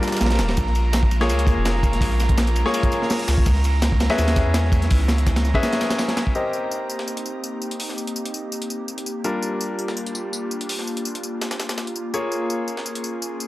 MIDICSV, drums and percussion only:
0, 0, Header, 1, 2, 480
1, 0, Start_track
1, 0, Key_signature, -3, "minor"
1, 0, Tempo, 361446
1, 757, Time_signature, 4, 2, 24, 8
1, 17892, End_track
2, 0, Start_track
2, 0, Title_t, "Drums"
2, 37, Note_on_c, 9, 38, 88
2, 37, Note_on_c, 9, 54, 71
2, 101, Note_off_c, 9, 38, 0
2, 101, Note_off_c, 9, 54, 0
2, 101, Note_on_c, 9, 38, 91
2, 101, Note_on_c, 9, 54, 68
2, 165, Note_off_c, 9, 38, 0
2, 165, Note_off_c, 9, 54, 0
2, 165, Note_on_c, 9, 38, 92
2, 165, Note_on_c, 9, 54, 70
2, 220, Note_off_c, 9, 38, 0
2, 220, Note_off_c, 9, 54, 0
2, 220, Note_on_c, 9, 38, 96
2, 220, Note_on_c, 9, 54, 69
2, 275, Note_off_c, 9, 54, 0
2, 275, Note_on_c, 9, 54, 88
2, 276, Note_off_c, 9, 38, 0
2, 276, Note_on_c, 9, 38, 95
2, 277, Note_on_c, 9, 51, 69
2, 342, Note_off_c, 9, 38, 0
2, 342, Note_on_c, 9, 38, 86
2, 348, Note_off_c, 9, 51, 0
2, 348, Note_on_c, 9, 51, 75
2, 403, Note_off_c, 9, 38, 0
2, 403, Note_on_c, 9, 38, 92
2, 404, Note_on_c, 9, 42, 45
2, 408, Note_off_c, 9, 54, 0
2, 420, Note_off_c, 9, 51, 0
2, 420, Note_on_c, 9, 51, 68
2, 462, Note_off_c, 9, 38, 0
2, 462, Note_on_c, 9, 38, 81
2, 467, Note_off_c, 9, 51, 0
2, 467, Note_on_c, 9, 51, 67
2, 516, Note_off_c, 9, 38, 0
2, 516, Note_on_c, 9, 38, 125
2, 516, Note_on_c, 9, 54, 71
2, 518, Note_off_c, 9, 38, 0
2, 518, Note_on_c, 9, 38, 113
2, 522, Note_off_c, 9, 51, 0
2, 522, Note_on_c, 9, 51, 75
2, 537, Note_off_c, 9, 42, 0
2, 643, Note_off_c, 9, 51, 0
2, 643, Note_on_c, 9, 51, 78
2, 649, Note_off_c, 9, 38, 0
2, 649, Note_off_c, 9, 54, 0
2, 649, Note_on_c, 9, 38, 98
2, 755, Note_on_c, 9, 54, 92
2, 756, Note_off_c, 9, 51, 0
2, 756, Note_on_c, 9, 51, 81
2, 765, Note_on_c, 9, 36, 114
2, 782, Note_off_c, 9, 38, 0
2, 883, Note_on_c, 9, 38, 35
2, 888, Note_off_c, 9, 54, 0
2, 889, Note_off_c, 9, 51, 0
2, 898, Note_off_c, 9, 36, 0
2, 997, Note_on_c, 9, 54, 70
2, 1002, Note_on_c, 9, 51, 70
2, 1016, Note_off_c, 9, 38, 0
2, 1130, Note_off_c, 9, 54, 0
2, 1135, Note_off_c, 9, 51, 0
2, 1236, Note_on_c, 9, 51, 89
2, 1237, Note_on_c, 9, 38, 116
2, 1237, Note_on_c, 9, 54, 89
2, 1250, Note_off_c, 9, 38, 0
2, 1250, Note_on_c, 9, 38, 112
2, 1364, Note_on_c, 9, 36, 88
2, 1368, Note_off_c, 9, 51, 0
2, 1370, Note_off_c, 9, 54, 0
2, 1383, Note_off_c, 9, 38, 0
2, 1476, Note_on_c, 9, 51, 69
2, 1478, Note_on_c, 9, 54, 70
2, 1497, Note_off_c, 9, 36, 0
2, 1601, Note_on_c, 9, 38, 59
2, 1607, Note_off_c, 9, 38, 0
2, 1607, Note_on_c, 9, 38, 57
2, 1609, Note_off_c, 9, 51, 0
2, 1610, Note_off_c, 9, 54, 0
2, 1718, Note_on_c, 9, 54, 91
2, 1721, Note_on_c, 9, 51, 96
2, 1740, Note_off_c, 9, 38, 0
2, 1845, Note_on_c, 9, 42, 46
2, 1850, Note_off_c, 9, 54, 0
2, 1854, Note_off_c, 9, 51, 0
2, 1854, Note_on_c, 9, 51, 45
2, 1948, Note_on_c, 9, 36, 107
2, 1956, Note_on_c, 9, 54, 68
2, 1963, Note_off_c, 9, 51, 0
2, 1963, Note_on_c, 9, 51, 65
2, 1978, Note_off_c, 9, 42, 0
2, 2081, Note_off_c, 9, 36, 0
2, 2089, Note_off_c, 9, 54, 0
2, 2095, Note_off_c, 9, 51, 0
2, 2196, Note_on_c, 9, 51, 83
2, 2197, Note_on_c, 9, 38, 118
2, 2197, Note_on_c, 9, 54, 92
2, 2200, Note_off_c, 9, 38, 0
2, 2200, Note_on_c, 9, 38, 110
2, 2329, Note_off_c, 9, 51, 0
2, 2329, Note_off_c, 9, 54, 0
2, 2332, Note_off_c, 9, 38, 0
2, 2332, Note_on_c, 9, 38, 40
2, 2432, Note_on_c, 9, 36, 89
2, 2433, Note_on_c, 9, 51, 70
2, 2437, Note_on_c, 9, 54, 72
2, 2465, Note_off_c, 9, 38, 0
2, 2565, Note_off_c, 9, 36, 0
2, 2565, Note_on_c, 9, 38, 44
2, 2565, Note_on_c, 9, 42, 45
2, 2566, Note_off_c, 9, 51, 0
2, 2570, Note_off_c, 9, 54, 0
2, 2667, Note_on_c, 9, 36, 100
2, 2677, Note_on_c, 9, 46, 85
2, 2678, Note_on_c, 9, 51, 86
2, 2698, Note_off_c, 9, 38, 0
2, 2698, Note_off_c, 9, 42, 0
2, 2800, Note_off_c, 9, 36, 0
2, 2805, Note_on_c, 9, 38, 38
2, 2810, Note_off_c, 9, 46, 0
2, 2810, Note_off_c, 9, 51, 0
2, 2916, Note_on_c, 9, 54, 70
2, 2923, Note_on_c, 9, 51, 72
2, 2926, Note_off_c, 9, 38, 0
2, 2926, Note_on_c, 9, 38, 43
2, 3044, Note_on_c, 9, 42, 46
2, 3048, Note_on_c, 9, 36, 99
2, 3049, Note_off_c, 9, 54, 0
2, 3055, Note_off_c, 9, 51, 0
2, 3059, Note_off_c, 9, 38, 0
2, 3155, Note_on_c, 9, 38, 116
2, 3155, Note_on_c, 9, 54, 90
2, 3158, Note_off_c, 9, 38, 0
2, 3158, Note_on_c, 9, 38, 124
2, 3160, Note_on_c, 9, 51, 91
2, 3176, Note_off_c, 9, 42, 0
2, 3181, Note_off_c, 9, 36, 0
2, 3284, Note_on_c, 9, 42, 46
2, 3288, Note_off_c, 9, 54, 0
2, 3291, Note_off_c, 9, 38, 0
2, 3293, Note_off_c, 9, 51, 0
2, 3294, Note_on_c, 9, 51, 46
2, 3395, Note_on_c, 9, 54, 71
2, 3398, Note_off_c, 9, 51, 0
2, 3398, Note_on_c, 9, 51, 65
2, 3417, Note_off_c, 9, 42, 0
2, 3528, Note_off_c, 9, 54, 0
2, 3531, Note_off_c, 9, 51, 0
2, 3534, Note_on_c, 9, 38, 43
2, 3635, Note_on_c, 9, 54, 89
2, 3640, Note_on_c, 9, 51, 92
2, 3667, Note_off_c, 9, 38, 0
2, 3762, Note_on_c, 9, 36, 103
2, 3764, Note_on_c, 9, 42, 46
2, 3768, Note_off_c, 9, 54, 0
2, 3773, Note_off_c, 9, 51, 0
2, 3874, Note_on_c, 9, 54, 69
2, 3886, Note_on_c, 9, 51, 68
2, 3895, Note_off_c, 9, 36, 0
2, 3896, Note_off_c, 9, 42, 0
2, 4007, Note_off_c, 9, 54, 0
2, 4013, Note_on_c, 9, 38, 55
2, 4018, Note_off_c, 9, 51, 0
2, 4115, Note_on_c, 9, 54, 92
2, 4121, Note_on_c, 9, 46, 86
2, 4125, Note_off_c, 9, 38, 0
2, 4125, Note_on_c, 9, 38, 123
2, 4243, Note_on_c, 9, 42, 45
2, 4246, Note_off_c, 9, 38, 0
2, 4246, Note_on_c, 9, 38, 46
2, 4248, Note_off_c, 9, 54, 0
2, 4254, Note_off_c, 9, 46, 0
2, 4355, Note_off_c, 9, 38, 0
2, 4355, Note_on_c, 9, 38, 122
2, 4355, Note_on_c, 9, 54, 75
2, 4360, Note_on_c, 9, 51, 74
2, 4361, Note_off_c, 9, 38, 0
2, 4361, Note_on_c, 9, 38, 42
2, 4376, Note_off_c, 9, 42, 0
2, 4487, Note_on_c, 9, 36, 89
2, 4488, Note_off_c, 9, 54, 0
2, 4493, Note_off_c, 9, 51, 0
2, 4494, Note_off_c, 9, 38, 0
2, 4593, Note_on_c, 9, 51, 90
2, 4595, Note_on_c, 9, 54, 93
2, 4600, Note_off_c, 9, 36, 0
2, 4600, Note_on_c, 9, 36, 116
2, 4726, Note_off_c, 9, 51, 0
2, 4726, Note_on_c, 9, 38, 36
2, 4728, Note_off_c, 9, 54, 0
2, 4733, Note_off_c, 9, 36, 0
2, 4835, Note_on_c, 9, 54, 70
2, 4844, Note_on_c, 9, 51, 75
2, 4859, Note_off_c, 9, 38, 0
2, 4968, Note_off_c, 9, 54, 0
2, 4976, Note_off_c, 9, 51, 0
2, 5075, Note_on_c, 9, 38, 117
2, 5075, Note_on_c, 9, 54, 92
2, 5079, Note_on_c, 9, 51, 100
2, 5207, Note_off_c, 9, 54, 0
2, 5208, Note_off_c, 9, 38, 0
2, 5211, Note_on_c, 9, 36, 90
2, 5212, Note_off_c, 9, 51, 0
2, 5314, Note_on_c, 9, 51, 85
2, 5315, Note_on_c, 9, 54, 68
2, 5319, Note_on_c, 9, 38, 116
2, 5343, Note_off_c, 9, 36, 0
2, 5438, Note_off_c, 9, 51, 0
2, 5438, Note_on_c, 9, 51, 85
2, 5442, Note_off_c, 9, 38, 0
2, 5442, Note_on_c, 9, 38, 59
2, 5446, Note_off_c, 9, 38, 0
2, 5446, Note_on_c, 9, 38, 101
2, 5447, Note_off_c, 9, 54, 0
2, 5551, Note_off_c, 9, 38, 0
2, 5551, Note_on_c, 9, 38, 111
2, 5554, Note_on_c, 9, 54, 88
2, 5557, Note_off_c, 9, 51, 0
2, 5557, Note_on_c, 9, 51, 81
2, 5680, Note_off_c, 9, 38, 0
2, 5680, Note_on_c, 9, 38, 118
2, 5680, Note_on_c, 9, 42, 48
2, 5681, Note_off_c, 9, 51, 0
2, 5681, Note_on_c, 9, 51, 82
2, 5687, Note_off_c, 9, 54, 0
2, 5793, Note_off_c, 9, 38, 0
2, 5793, Note_on_c, 9, 38, 110
2, 5793, Note_on_c, 9, 54, 79
2, 5795, Note_on_c, 9, 36, 97
2, 5796, Note_off_c, 9, 51, 0
2, 5796, Note_on_c, 9, 51, 76
2, 5813, Note_off_c, 9, 42, 0
2, 5925, Note_off_c, 9, 38, 0
2, 5925, Note_off_c, 9, 54, 0
2, 5928, Note_off_c, 9, 36, 0
2, 5929, Note_off_c, 9, 51, 0
2, 6030, Note_on_c, 9, 38, 110
2, 6033, Note_off_c, 9, 38, 0
2, 6033, Note_on_c, 9, 38, 122
2, 6033, Note_on_c, 9, 54, 93
2, 6041, Note_on_c, 9, 51, 88
2, 6166, Note_off_c, 9, 38, 0
2, 6166, Note_off_c, 9, 54, 0
2, 6167, Note_on_c, 9, 38, 41
2, 6174, Note_off_c, 9, 51, 0
2, 6267, Note_on_c, 9, 36, 106
2, 6272, Note_on_c, 9, 51, 74
2, 6275, Note_on_c, 9, 54, 73
2, 6300, Note_off_c, 9, 38, 0
2, 6400, Note_off_c, 9, 36, 0
2, 6403, Note_on_c, 9, 42, 45
2, 6405, Note_off_c, 9, 51, 0
2, 6405, Note_on_c, 9, 38, 46
2, 6407, Note_off_c, 9, 54, 0
2, 6512, Note_on_c, 9, 51, 90
2, 6515, Note_on_c, 9, 46, 83
2, 6523, Note_on_c, 9, 36, 110
2, 6536, Note_off_c, 9, 42, 0
2, 6538, Note_off_c, 9, 38, 0
2, 6644, Note_off_c, 9, 51, 0
2, 6644, Note_on_c, 9, 38, 38
2, 6648, Note_off_c, 9, 46, 0
2, 6656, Note_off_c, 9, 36, 0
2, 6750, Note_off_c, 9, 38, 0
2, 6750, Note_on_c, 9, 38, 104
2, 6753, Note_on_c, 9, 54, 68
2, 6759, Note_on_c, 9, 51, 78
2, 6883, Note_off_c, 9, 38, 0
2, 6883, Note_on_c, 9, 42, 47
2, 6886, Note_off_c, 9, 54, 0
2, 6889, Note_on_c, 9, 38, 38
2, 6892, Note_off_c, 9, 51, 0
2, 6992, Note_on_c, 9, 36, 95
2, 6993, Note_off_c, 9, 38, 0
2, 6993, Note_on_c, 9, 38, 113
2, 6993, Note_on_c, 9, 54, 85
2, 7003, Note_on_c, 9, 51, 64
2, 7016, Note_off_c, 9, 42, 0
2, 7118, Note_off_c, 9, 51, 0
2, 7118, Note_on_c, 9, 51, 84
2, 7121, Note_off_c, 9, 38, 0
2, 7121, Note_on_c, 9, 38, 101
2, 7123, Note_on_c, 9, 42, 46
2, 7125, Note_off_c, 9, 36, 0
2, 7126, Note_off_c, 9, 54, 0
2, 7236, Note_on_c, 9, 54, 70
2, 7239, Note_off_c, 9, 38, 0
2, 7239, Note_on_c, 9, 38, 36
2, 7251, Note_off_c, 9, 51, 0
2, 7256, Note_off_c, 9, 42, 0
2, 7360, Note_on_c, 9, 36, 92
2, 7367, Note_on_c, 9, 51, 65
2, 7368, Note_off_c, 9, 54, 0
2, 7372, Note_off_c, 9, 38, 0
2, 7476, Note_on_c, 9, 54, 90
2, 7477, Note_off_c, 9, 51, 0
2, 7477, Note_on_c, 9, 51, 81
2, 7479, Note_on_c, 9, 38, 113
2, 7493, Note_off_c, 9, 36, 0
2, 7603, Note_on_c, 9, 42, 48
2, 7608, Note_off_c, 9, 54, 0
2, 7609, Note_off_c, 9, 38, 0
2, 7609, Note_off_c, 9, 51, 0
2, 7609, Note_on_c, 9, 38, 115
2, 7611, Note_on_c, 9, 51, 87
2, 7714, Note_off_c, 9, 38, 0
2, 7714, Note_on_c, 9, 38, 104
2, 7714, Note_on_c, 9, 54, 80
2, 7718, Note_off_c, 9, 51, 0
2, 7718, Note_on_c, 9, 51, 78
2, 7721, Note_off_c, 9, 38, 0
2, 7721, Note_on_c, 9, 38, 98
2, 7736, Note_off_c, 9, 42, 0
2, 7840, Note_off_c, 9, 38, 0
2, 7840, Note_on_c, 9, 38, 106
2, 7841, Note_off_c, 9, 38, 0
2, 7841, Note_off_c, 9, 54, 0
2, 7841, Note_on_c, 9, 38, 110
2, 7841, Note_on_c, 9, 54, 80
2, 7844, Note_off_c, 9, 51, 0
2, 7844, Note_on_c, 9, 51, 74
2, 7945, Note_off_c, 9, 51, 0
2, 7945, Note_on_c, 9, 51, 76
2, 7954, Note_off_c, 9, 38, 0
2, 7954, Note_off_c, 9, 54, 0
2, 7954, Note_on_c, 9, 38, 106
2, 7954, Note_on_c, 9, 54, 83
2, 7958, Note_off_c, 9, 38, 0
2, 7958, Note_on_c, 9, 38, 98
2, 8078, Note_off_c, 9, 51, 0
2, 8079, Note_off_c, 9, 38, 0
2, 8079, Note_on_c, 9, 38, 100
2, 8083, Note_on_c, 9, 42, 45
2, 8084, Note_on_c, 9, 51, 71
2, 8087, Note_off_c, 9, 54, 0
2, 8191, Note_off_c, 9, 38, 0
2, 8191, Note_on_c, 9, 38, 106
2, 8194, Note_off_c, 9, 38, 0
2, 8194, Note_on_c, 9, 38, 122
2, 8194, Note_on_c, 9, 54, 72
2, 8200, Note_off_c, 9, 51, 0
2, 8200, Note_on_c, 9, 51, 77
2, 8216, Note_off_c, 9, 42, 0
2, 8324, Note_on_c, 9, 36, 81
2, 8327, Note_off_c, 9, 38, 0
2, 8327, Note_off_c, 9, 54, 0
2, 8333, Note_off_c, 9, 51, 0
2, 8433, Note_on_c, 9, 54, 82
2, 8457, Note_off_c, 9, 36, 0
2, 8566, Note_off_c, 9, 54, 0
2, 8675, Note_on_c, 9, 54, 63
2, 8808, Note_off_c, 9, 54, 0
2, 8916, Note_on_c, 9, 54, 78
2, 9048, Note_off_c, 9, 54, 0
2, 9157, Note_on_c, 9, 54, 63
2, 9284, Note_on_c, 9, 38, 53
2, 9289, Note_off_c, 9, 54, 0
2, 9396, Note_on_c, 9, 54, 80
2, 9417, Note_off_c, 9, 38, 0
2, 9523, Note_on_c, 9, 42, 42
2, 9529, Note_off_c, 9, 54, 0
2, 9635, Note_on_c, 9, 54, 61
2, 9655, Note_off_c, 9, 42, 0
2, 9768, Note_off_c, 9, 54, 0
2, 9875, Note_on_c, 9, 54, 79
2, 10008, Note_off_c, 9, 54, 0
2, 10115, Note_on_c, 9, 54, 63
2, 10243, Note_on_c, 9, 42, 40
2, 10248, Note_off_c, 9, 54, 0
2, 10355, Note_on_c, 9, 46, 76
2, 10375, Note_off_c, 9, 42, 0
2, 10483, Note_on_c, 9, 38, 33
2, 10487, Note_off_c, 9, 46, 0
2, 10595, Note_on_c, 9, 54, 65
2, 10616, Note_off_c, 9, 38, 0
2, 10723, Note_on_c, 9, 42, 41
2, 10728, Note_off_c, 9, 54, 0
2, 10835, Note_on_c, 9, 54, 80
2, 10855, Note_off_c, 9, 42, 0
2, 10963, Note_on_c, 9, 42, 41
2, 10968, Note_off_c, 9, 54, 0
2, 11075, Note_on_c, 9, 54, 63
2, 11095, Note_off_c, 9, 42, 0
2, 11208, Note_off_c, 9, 54, 0
2, 11315, Note_on_c, 9, 54, 81
2, 11443, Note_on_c, 9, 42, 42
2, 11448, Note_off_c, 9, 54, 0
2, 11555, Note_on_c, 9, 54, 62
2, 11576, Note_off_c, 9, 42, 0
2, 11688, Note_off_c, 9, 54, 0
2, 11794, Note_on_c, 9, 54, 82
2, 11923, Note_on_c, 9, 42, 41
2, 11927, Note_off_c, 9, 54, 0
2, 12035, Note_on_c, 9, 54, 65
2, 12056, Note_off_c, 9, 42, 0
2, 12168, Note_off_c, 9, 54, 0
2, 12275, Note_on_c, 9, 54, 83
2, 12408, Note_off_c, 9, 54, 0
2, 12516, Note_on_c, 9, 54, 64
2, 12649, Note_off_c, 9, 54, 0
2, 12757, Note_on_c, 9, 54, 80
2, 12889, Note_off_c, 9, 54, 0
2, 12996, Note_on_c, 9, 54, 64
2, 13125, Note_on_c, 9, 38, 54
2, 13129, Note_off_c, 9, 54, 0
2, 13236, Note_on_c, 9, 54, 79
2, 13258, Note_off_c, 9, 38, 0
2, 13366, Note_on_c, 9, 42, 42
2, 13369, Note_off_c, 9, 54, 0
2, 13478, Note_on_c, 9, 54, 66
2, 13499, Note_off_c, 9, 42, 0
2, 13611, Note_off_c, 9, 54, 0
2, 13718, Note_on_c, 9, 54, 80
2, 13851, Note_off_c, 9, 54, 0
2, 13958, Note_on_c, 9, 54, 65
2, 14088, Note_on_c, 9, 42, 41
2, 14091, Note_off_c, 9, 54, 0
2, 14199, Note_on_c, 9, 46, 78
2, 14221, Note_off_c, 9, 42, 0
2, 14327, Note_on_c, 9, 38, 35
2, 14332, Note_off_c, 9, 46, 0
2, 14439, Note_on_c, 9, 54, 64
2, 14460, Note_off_c, 9, 38, 0
2, 14567, Note_on_c, 9, 42, 40
2, 14572, Note_off_c, 9, 54, 0
2, 14677, Note_on_c, 9, 54, 78
2, 14699, Note_off_c, 9, 42, 0
2, 14808, Note_on_c, 9, 42, 39
2, 14810, Note_off_c, 9, 54, 0
2, 14919, Note_on_c, 9, 54, 65
2, 14941, Note_off_c, 9, 42, 0
2, 15051, Note_off_c, 9, 54, 0
2, 15159, Note_on_c, 9, 38, 96
2, 15159, Note_on_c, 9, 54, 74
2, 15285, Note_off_c, 9, 38, 0
2, 15285, Note_off_c, 9, 54, 0
2, 15285, Note_on_c, 9, 38, 101
2, 15285, Note_on_c, 9, 54, 72
2, 15398, Note_off_c, 9, 38, 0
2, 15398, Note_off_c, 9, 54, 0
2, 15398, Note_on_c, 9, 38, 97
2, 15398, Note_on_c, 9, 54, 74
2, 15527, Note_off_c, 9, 38, 0
2, 15527, Note_off_c, 9, 54, 0
2, 15527, Note_on_c, 9, 38, 103
2, 15527, Note_on_c, 9, 54, 77
2, 15639, Note_off_c, 9, 38, 0
2, 15639, Note_off_c, 9, 54, 0
2, 15639, Note_on_c, 9, 38, 100
2, 15639, Note_on_c, 9, 54, 74
2, 15767, Note_on_c, 9, 42, 41
2, 15772, Note_off_c, 9, 38, 0
2, 15772, Note_off_c, 9, 54, 0
2, 15877, Note_on_c, 9, 54, 75
2, 15900, Note_off_c, 9, 42, 0
2, 16010, Note_off_c, 9, 54, 0
2, 16118, Note_on_c, 9, 54, 86
2, 16251, Note_off_c, 9, 54, 0
2, 16357, Note_on_c, 9, 54, 61
2, 16490, Note_off_c, 9, 54, 0
2, 16598, Note_on_c, 9, 54, 79
2, 16731, Note_off_c, 9, 54, 0
2, 16835, Note_on_c, 9, 54, 66
2, 16963, Note_on_c, 9, 38, 53
2, 16968, Note_off_c, 9, 54, 0
2, 17074, Note_on_c, 9, 54, 83
2, 17096, Note_off_c, 9, 38, 0
2, 17203, Note_on_c, 9, 42, 43
2, 17207, Note_off_c, 9, 54, 0
2, 17315, Note_on_c, 9, 54, 62
2, 17336, Note_off_c, 9, 42, 0
2, 17448, Note_off_c, 9, 54, 0
2, 17557, Note_on_c, 9, 54, 86
2, 17689, Note_off_c, 9, 54, 0
2, 17797, Note_on_c, 9, 54, 65
2, 17892, Note_off_c, 9, 54, 0
2, 17892, End_track
0, 0, End_of_file